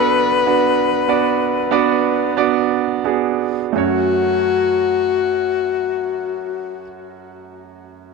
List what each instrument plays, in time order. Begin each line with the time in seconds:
Already playing: grand piano B1 B2 B3 D4 F#4 A4 D5, alto saxophone B4, downlifter
0.46 grand piano B3 D4 F#4 B4
1.08 grand piano B3 D4 F#4 D5
1.71 grand piano B3 D4 F#4 D5
2.37 grand piano B3 D4 F#4 D5
3.04 grand piano B3 D4 F#4 G#4
3.73 grand piano F#2 A3 C#4 F#4, alto saxophone F#4
3.78 grand piano C#5